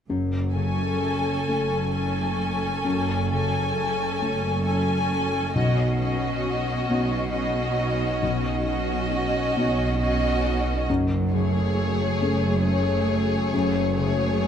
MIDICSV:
0, 0, Header, 1, 8, 480
1, 0, Start_track
1, 0, Tempo, 917431
1, 50, Time_signature, 6, 3, 24, 8
1, 1970, Tempo, 887574
1, 7762, End_track
2, 0, Start_track
2, 0, Title_t, "Violin section"
2, 0, Program_c, 0, 48
2, 284, Note_on_c, 0, 80, 37
2, 993, Note_off_c, 0, 80, 0
2, 1010, Note_on_c, 0, 80, 35
2, 1717, Note_off_c, 0, 80, 0
2, 1735, Note_on_c, 0, 80, 39
2, 2441, Note_off_c, 0, 80, 0
2, 2454, Note_on_c, 0, 80, 38
2, 2926, Note_off_c, 0, 80, 0
2, 2935, Note_on_c, 0, 75, 38
2, 3173, Note_off_c, 0, 75, 0
2, 3181, Note_on_c, 0, 75, 40
2, 3886, Note_off_c, 0, 75, 0
2, 3897, Note_on_c, 0, 75, 44
2, 4604, Note_off_c, 0, 75, 0
2, 4616, Note_on_c, 0, 75, 48
2, 5326, Note_off_c, 0, 75, 0
2, 5349, Note_on_c, 0, 75, 48
2, 5815, Note_off_c, 0, 75, 0
2, 6063, Note_on_c, 0, 73, 46
2, 6761, Note_off_c, 0, 73, 0
2, 6772, Note_on_c, 0, 73, 42
2, 7476, Note_off_c, 0, 73, 0
2, 7495, Note_on_c, 0, 73, 48
2, 7762, Note_off_c, 0, 73, 0
2, 7762, End_track
3, 0, Start_track
3, 0, Title_t, "Violin section"
3, 0, Program_c, 1, 48
3, 290, Note_on_c, 1, 69, 37
3, 996, Note_off_c, 1, 69, 0
3, 1010, Note_on_c, 1, 69, 34
3, 1717, Note_off_c, 1, 69, 0
3, 1730, Note_on_c, 1, 69, 41
3, 2438, Note_off_c, 1, 69, 0
3, 2458, Note_on_c, 1, 69, 34
3, 2928, Note_off_c, 1, 69, 0
3, 2938, Note_on_c, 1, 66, 37
3, 3173, Note_off_c, 1, 66, 0
3, 3179, Note_on_c, 1, 66, 42
3, 3885, Note_off_c, 1, 66, 0
3, 3900, Note_on_c, 1, 66, 40
3, 4605, Note_off_c, 1, 66, 0
3, 4619, Note_on_c, 1, 66, 45
3, 5327, Note_off_c, 1, 66, 0
3, 5348, Note_on_c, 1, 66, 44
3, 5814, Note_off_c, 1, 66, 0
3, 6057, Note_on_c, 1, 68, 46
3, 6758, Note_off_c, 1, 68, 0
3, 6776, Note_on_c, 1, 68, 41
3, 7478, Note_off_c, 1, 68, 0
3, 7495, Note_on_c, 1, 68, 42
3, 7762, Note_off_c, 1, 68, 0
3, 7762, End_track
4, 0, Start_track
4, 0, Title_t, "Harp"
4, 0, Program_c, 2, 46
4, 51, Note_on_c, 2, 42, 37
4, 289, Note_on_c, 2, 49, 30
4, 529, Note_on_c, 2, 57, 28
4, 769, Note_on_c, 2, 61, 29
4, 1011, Note_on_c, 2, 80, 29
4, 1245, Note_off_c, 2, 61, 0
4, 1252, Note_on_c, 2, 61, 30
4, 1485, Note_off_c, 2, 42, 0
4, 1491, Note_on_c, 2, 42, 43
4, 1727, Note_off_c, 2, 49, 0
4, 1733, Note_on_c, 2, 49, 29
4, 1964, Note_off_c, 2, 57, 0
4, 1970, Note_on_c, 2, 57, 31
4, 2209, Note_off_c, 2, 61, 0
4, 2215, Note_on_c, 2, 61, 33
4, 2456, Note_on_c, 2, 69, 34
4, 2689, Note_off_c, 2, 61, 0
4, 2696, Note_on_c, 2, 61, 35
4, 2938, Note_on_c, 2, 47, 43
4, 2955, Note_off_c, 2, 57, 0
4, 2956, Note_off_c, 2, 42, 0
4, 2956, Note_off_c, 2, 49, 0
4, 2956, Note_off_c, 2, 69, 0
4, 2956, Note_off_c, 2, 80, 0
4, 3180, Note_on_c, 2, 54, 35
4, 3417, Note_off_c, 2, 61, 0
4, 3424, Note_on_c, 2, 61, 37
4, 3665, Note_on_c, 2, 63, 36
4, 3904, Note_on_c, 2, 66, 37
4, 4137, Note_off_c, 2, 63, 0
4, 4144, Note_on_c, 2, 63, 38
4, 4377, Note_off_c, 2, 47, 0
4, 4384, Note_on_c, 2, 47, 46
4, 4617, Note_off_c, 2, 54, 0
4, 4624, Note_on_c, 2, 54, 38
4, 4859, Note_off_c, 2, 61, 0
4, 4865, Note_on_c, 2, 61, 38
4, 5099, Note_off_c, 2, 63, 0
4, 5105, Note_on_c, 2, 63, 37
4, 5335, Note_off_c, 2, 66, 0
4, 5342, Note_on_c, 2, 66, 37
4, 5576, Note_off_c, 2, 63, 0
4, 5582, Note_on_c, 2, 63, 36
4, 5824, Note_on_c, 2, 42, 45
4, 5840, Note_off_c, 2, 63, 0
4, 5843, Note_off_c, 2, 47, 0
4, 6062, Note_on_c, 2, 49, 38
4, 6301, Note_on_c, 2, 57, 38
4, 6531, Note_off_c, 2, 61, 0
4, 6537, Note_on_c, 2, 61, 40
4, 6733, Note_off_c, 2, 54, 0
4, 6775, Note_on_c, 2, 68, 38
4, 7008, Note_off_c, 2, 61, 0
4, 7014, Note_on_c, 2, 61, 38
4, 7249, Note_off_c, 2, 42, 0
4, 7255, Note_on_c, 2, 42, 45
4, 7451, Note_off_c, 2, 66, 0
4, 7485, Note_off_c, 2, 49, 0
4, 7492, Note_on_c, 2, 49, 33
4, 7725, Note_off_c, 2, 57, 0
4, 7731, Note_on_c, 2, 57, 38
4, 7762, Note_off_c, 2, 42, 0
4, 7762, Note_off_c, 2, 49, 0
4, 7762, Note_off_c, 2, 57, 0
4, 7762, Note_off_c, 2, 61, 0
4, 7762, Note_off_c, 2, 68, 0
4, 7762, End_track
5, 0, Start_track
5, 0, Title_t, "Viola section"
5, 0, Program_c, 3, 48
5, 287, Note_on_c, 3, 61, 30
5, 994, Note_off_c, 3, 61, 0
5, 1011, Note_on_c, 3, 61, 33
5, 1717, Note_off_c, 3, 61, 0
5, 1729, Note_on_c, 3, 61, 35
5, 2438, Note_off_c, 3, 61, 0
5, 2457, Note_on_c, 3, 61, 39
5, 2927, Note_off_c, 3, 61, 0
5, 2933, Note_on_c, 3, 61, 37
5, 3172, Note_off_c, 3, 61, 0
5, 3178, Note_on_c, 3, 61, 36
5, 3884, Note_off_c, 3, 61, 0
5, 3901, Note_on_c, 3, 61, 39
5, 4606, Note_off_c, 3, 61, 0
5, 4621, Note_on_c, 3, 61, 39
5, 5328, Note_off_c, 3, 61, 0
5, 5341, Note_on_c, 3, 61, 42
5, 5810, Note_off_c, 3, 61, 0
5, 6062, Note_on_c, 3, 57, 39
5, 6760, Note_off_c, 3, 57, 0
5, 6772, Note_on_c, 3, 57, 41
5, 7476, Note_off_c, 3, 57, 0
5, 7490, Note_on_c, 3, 57, 42
5, 7762, Note_off_c, 3, 57, 0
5, 7762, End_track
6, 0, Start_track
6, 0, Title_t, "Felt piano"
6, 0, Program_c, 4, 0
6, 50, Note_on_c, 4, 42, 37
6, 156, Control_c, 4, 64, 127
6, 748, Note_off_c, 4, 42, 0
6, 773, Note_on_c, 4, 57, 26
6, 776, Note_on_c, 4, 61, 26
6, 778, Note_on_c, 4, 69, 30
6, 1471, Note_off_c, 4, 57, 0
6, 1472, Note_off_c, 4, 61, 0
6, 1473, Note_off_c, 4, 69, 0
6, 1489, Note_on_c, 4, 42, 37
6, 1501, Control_c, 4, 64, 0
6, 1600, Control_c, 4, 64, 127
6, 2192, Note_off_c, 4, 42, 0
6, 2215, Note_on_c, 4, 57, 29
6, 2216, Note_on_c, 4, 61, 30
6, 2218, Note_on_c, 4, 69, 33
6, 2915, Note_off_c, 4, 57, 0
6, 2915, Note_off_c, 4, 61, 0
6, 2916, Note_off_c, 4, 69, 0
6, 2936, Note_on_c, 4, 35, 45
6, 2946, Control_c, 4, 64, 0
6, 3039, Control_c, 4, 64, 127
6, 3637, Note_off_c, 4, 35, 0
6, 3660, Note_on_c, 4, 59, 35
6, 3661, Note_on_c, 4, 61, 29
6, 3663, Note_on_c, 4, 66, 35
6, 4357, Note_off_c, 4, 59, 0
6, 4357, Note_off_c, 4, 61, 0
6, 4359, Note_off_c, 4, 66, 0
6, 4381, Note_on_c, 4, 35, 48
6, 4388, Control_c, 4, 64, 0
6, 4485, Control_c, 4, 64, 127
6, 5083, Note_off_c, 4, 35, 0
6, 5105, Note_on_c, 4, 59, 32
6, 5109, Note_on_c, 4, 61, 34
6, 5112, Note_on_c, 4, 66, 38
6, 5800, Note_off_c, 4, 59, 0
6, 5802, Note_off_c, 4, 61, 0
6, 5804, Note_off_c, 4, 66, 0
6, 5826, Note_on_c, 4, 42, 50
6, 5830, Control_c, 4, 64, 0
6, 5911, Control_c, 4, 64, 127
6, 6516, Note_off_c, 4, 42, 0
6, 6541, Note_on_c, 4, 57, 36
6, 6542, Note_on_c, 4, 61, 33
6, 6545, Note_on_c, 4, 68, 35
6, 7233, Note_off_c, 4, 57, 0
6, 7233, Note_off_c, 4, 61, 0
6, 7235, Note_off_c, 4, 68, 0
6, 7254, Note_on_c, 4, 42, 43
6, 7261, Control_c, 4, 64, 0
6, 7336, Control_c, 4, 64, 127
6, 7762, Note_off_c, 4, 42, 0
6, 7762, End_track
7, 0, Start_track
7, 0, Title_t, "Cello section"
7, 0, Program_c, 5, 48
7, 49, Note_on_c, 5, 42, 41
7, 684, Note_off_c, 5, 42, 0
7, 769, Note_on_c, 5, 42, 43
7, 1405, Note_off_c, 5, 42, 0
7, 1491, Note_on_c, 5, 42, 43
7, 2128, Note_off_c, 5, 42, 0
7, 2215, Note_on_c, 5, 42, 45
7, 2850, Note_off_c, 5, 42, 0
7, 2932, Note_on_c, 5, 47, 48
7, 3572, Note_off_c, 5, 47, 0
7, 3662, Note_on_c, 5, 47, 52
7, 4295, Note_off_c, 5, 47, 0
7, 4380, Note_on_c, 5, 47, 47
7, 5019, Note_off_c, 5, 47, 0
7, 5104, Note_on_c, 5, 47, 51
7, 5736, Note_off_c, 5, 47, 0
7, 5823, Note_on_c, 5, 42, 55
7, 6452, Note_off_c, 5, 42, 0
7, 6539, Note_on_c, 5, 42, 55
7, 7169, Note_off_c, 5, 42, 0
7, 7251, Note_on_c, 5, 42, 53
7, 7762, Note_off_c, 5, 42, 0
7, 7762, End_track
8, 0, Start_track
8, 0, Title_t, "Double bass section"
8, 0, Program_c, 6, 48
8, 49, Note_on_c, 6, 30, 48
8, 684, Note_off_c, 6, 30, 0
8, 768, Note_on_c, 6, 30, 43
8, 1405, Note_off_c, 6, 30, 0
8, 1489, Note_on_c, 6, 30, 48
8, 2128, Note_off_c, 6, 30, 0
8, 2215, Note_on_c, 6, 30, 51
8, 2850, Note_off_c, 6, 30, 0
8, 2936, Note_on_c, 6, 35, 53
8, 3574, Note_off_c, 6, 35, 0
8, 3659, Note_on_c, 6, 35, 53
8, 4293, Note_off_c, 6, 35, 0
8, 4377, Note_on_c, 6, 35, 55
8, 5018, Note_off_c, 6, 35, 0
8, 5103, Note_on_c, 6, 35, 58
8, 5736, Note_off_c, 6, 35, 0
8, 5822, Note_on_c, 6, 30, 62
8, 6451, Note_off_c, 6, 30, 0
8, 6534, Note_on_c, 6, 30, 54
8, 7166, Note_off_c, 6, 30, 0
8, 7251, Note_on_c, 6, 30, 61
8, 7762, Note_off_c, 6, 30, 0
8, 7762, End_track
0, 0, End_of_file